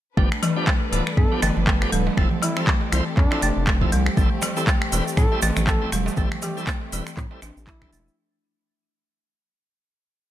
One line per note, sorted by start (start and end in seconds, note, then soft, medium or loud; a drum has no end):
0.17 0.26 G1 loud
0.17 0.29 F3 loud
0.17 2.15 G3 medium
0.17 0.25 A3 medium
0.17 0.29 B3 medium
0.17 2.16 D4 medium
0.17 0.29 D4 medium
0.17 0.29 G4 loud
0.17 4.13 A4 medium
0.17 2.15 B4 medium
0.17 kick loud
0.17 mid tom medium
0.32 finger snap loud
0.43 0.50 E3 loud
0.43 open hi-hat medium
0.43 mid tom medium
0.43 darbuka ka loud
0.56 0.66 F3 medium
0.56 0.66 B3 medium
0.56 0.66 D4 medium
0.56 0.66 G4 loud
0.67 0.75 A3 loud
0.67 finger snap medium
0.67 kick loud
0.67 clap loud
0.92 1.01 D1 medium
0.92 1.00 E3 medium
0.92 1.04 F3 medium
0.92 1.04 B3 medium
0.92 1.04 D4 medium
0.92 1.04 A4 medium
0.92 open hi-hat medium
0.92 darbuka tek medium
1.07 finger snap medium
1.17 1.26 G2 medium
1.17 1.25 B3 medium
1.17 1.37 A4 loud
1.17 kick loud
1.17 darbuka tek medium
1.32 1.41 F3 loud
1.32 1.41 B3 medium
1.32 1.41 D4 medium
1.32 1.41 G4 loud
1.42 1.51 G1 loud
1.42 1.55 A3 loud
1.42 finger snap medium
1.42 open hi-hat medium
1.42 mid tom medium
1.42 darbuka tek medium
1.57 1.86 G1 medium
1.57 darbuka dum loud
1.67 1.75 A3 loud
1.67 kick loud
1.67 clap loud
1.67 darbuka tek medium
1.82 1.91 F3 medium
1.82 1.91 B3 medium
1.82 1.91 D4 medium
1.82 1.91 G4 loud
1.82 finger snap medium
1.92 2.09 D1 loud
1.92 2.05 G3 loud
1.92 open hi-hat medium
1.92 darbuka dum medium
2.07 darbuka tek medium
2.17 2.26 F1 loud
2.17 2.29 F3 loud
2.17 2.25 A3 medium
2.17 8.13 C4 medium
2.17 2.29 C4 medium
2.17 2.29 E4 medium
2.17 8.14 G4 medium
2.17 2.29 A4 loud
2.17 finger snap medium
2.17 kick loud
2.17 mid tom medium
2.31 darbuka dum medium
2.42 2.50 E3 loud
2.42 2.62 E4 medium
2.42 open hi-hat loud
2.42 darbuka ka loud
2.57 2.66 F3 medium
2.57 2.66 C4 medium
2.57 2.66 E4 medium
2.57 2.66 A4 loud
2.57 finger snap loud
2.67 2.75 A3 loud
2.67 kick loud
2.67 clap loud
2.81 darbuka ka medium
2.92 3.01 C2 medium
2.92 3.00 E3 medium
2.92 3.04 F3 medium
2.92 3.04 C4 medium
2.92 3.04 E4 medium
2.92 3.04 C5 medium
2.92 finger snap medium
2.92 open hi-hat loud
3.17 3.26 F2 medium
3.17 3.25 C4 medium
3.17 3.68 D4 loud
3.17 kick loud
3.17 clap medium
3.31 3.41 F3 loud
3.31 3.41 C4 medium
3.31 3.41 E4 medium
3.31 3.41 A4 loud
3.31 finger snap loud
3.31 darbuka tek medium
3.41 3.51 F1 loud
3.41 3.55 A3 loud
3.41 open hi-hat loud
3.41 darbuka ka medium
3.41 darbuka tek medium
3.57 3.86 F1 medium
3.67 3.75 A3 loud
3.67 finger snap medium
3.67 kick loud
3.67 clap loud
3.67 darbuka tek medium
3.81 3.91 F3 medium
3.81 3.91 C4 medium
3.81 3.91 E4 medium
3.81 3.91 A4 loud
3.81 kick medium
3.81 darbuka ka medium
3.81 darbuka dum loud
3.92 4.09 C2 loud
3.92 4.05 G3 loud
3.92 open hi-hat loud
3.92 darbuka tek medium
4.06 finger snap loud
4.17 4.26 A1 loud
4.17 4.29 G3 loud
4.17 4.25 A3 medium
4.17 8.14 A3 medium
4.17 4.29 C4 medium
4.17 4.29 E4 medium
4.17 4.29 A4 loud
4.17 kick loud
4.17 mid tom medium
4.17 shaker soft
4.42 4.50 E3 loud
4.42 finger snap medium
4.42 open hi-hat loud
4.42 mid tom medium
4.42 darbuka ka loud
4.42 shaker medium
4.57 4.66 G3 medium
4.57 4.66 C4 medium
4.57 4.66 E4 medium
4.57 4.66 A4 loud
4.57 shaker medium
4.67 4.75 A3 loud
4.67 kick loud
4.67 clap loud
4.67 shaker soft
4.82 finger snap medium
4.92 5.01 E1 medium
4.92 5.00 E3 medium
4.92 5.04 G3 medium
4.92 5.04 C4 medium
4.92 5.04 E4 medium
4.92 5.04 B4 medium
4.92 open hi-hat medium
4.92 darbuka tek medium
4.92 shaker medium
5.08 shaker medium
5.17 5.26 A2 medium
5.17 5.25 C4 medium
5.17 5.37 A4 loud
5.17 finger snap medium
5.17 kick loud
5.17 darbuka tek medium
5.17 shaker soft
5.32 5.41 G3 loud
5.32 5.41 C4 medium
5.32 5.41 E4 medium
5.32 5.41 A4 loud
5.42 5.51 A1 loud
5.42 5.56 A3 loud
5.42 open hi-hat loud
5.42 mid tom medium
5.42 darbuka tek loud
5.42 shaker loud
5.57 5.86 A1 medium
5.57 finger snap loud
5.57 darbuka dum loud
5.57 shaker medium
5.67 5.75 A3 loud
5.67 5.87 A4 medium
5.67 kick loud
5.67 clap loud
5.67 darbuka tek medium
5.67 shaker soft
5.82 5.91 G3 medium
5.82 5.91 C4 medium
5.82 5.91 E4 medium
5.82 5.91 A4 loud
5.92 6.09 E1 loud
5.92 6.05 G3 loud
5.92 finger snap medium
5.92 open hi-hat medium
5.92 darbuka dum medium
5.92 shaker loud
6.06 darbuka tek loud
6.06 shaker medium
6.17 6.26 A1 loud
6.17 6.29 G3 loud
6.17 6.25 A3 medium
6.17 6.29 C4 medium
6.17 6.29 E4 loud
6.17 6.29 A4 loud
6.17 kick loud
6.17 mid tom medium
6.17 shaker soft
6.31 finger snap loud
6.31 darbuka dum medium
6.42 6.50 E3 loud
6.42 6.62 G4 medium
6.42 open hi-hat medium
6.42 darbuka ka loud
6.42 shaker medium
6.57 6.66 G3 medium
6.57 6.66 C4 medium
6.57 6.66 E4 medium
6.57 6.66 A4 loud
6.57 shaker medium
6.67 6.75 A3 loud
6.67 finger snap medium
6.67 kick loud
6.67 clap loud
6.67 shaker soft
6.81 darbuka ka medium
6.92 7.01 E1 medium
6.92 7.01 E3 medium
6.92 7.04 G3 medium
6.92 7.04 C4 medium
6.92 7.04 E4 medium
6.92 7.04 B4 medium
6.92 open hi-hat medium
6.92 shaker loud
7.07 finger snap medium
7.07 shaker medium
7.17 7.26 A2 medium
7.17 7.25 C4 medium
7.17 kick loud
7.17 clap medium
7.17 shaker soft
7.31 7.41 G3 loud
7.31 7.41 C4 medium
7.31 7.41 E4 medium
7.31 7.41 A4 loud
7.31 darbuka tek loud
7.42 7.51 A1 loud
7.42 7.56 D4 medium
7.42 finger snap medium
7.42 open hi-hat medium
7.42 darbuka ka medium
7.42 darbuka tek medium
7.42 shaker loud
7.57 7.86 A1 medium
7.57 shaker soft
7.66 7.81 E4 medium
7.66 8.18 E4 loud
7.66 kick loud
7.66 clap loud
7.66 darbuka tek medium
7.66 shaker soft
7.82 7.91 G3 medium
7.82 7.91 C4 medium
7.82 7.92 D4 medium
7.82 7.91 E4 medium
7.82 7.91 A4 loud
7.82 finger snap loud
7.82 kick medium
7.82 darbuka ka medium
7.82 darbuka dum medium
7.93 8.09 E1 loud
7.93 8.06 A3 medium
7.93 open hi-hat medium
7.93 darbuka tek medium
7.93 shaker loud
8.08 shaker medium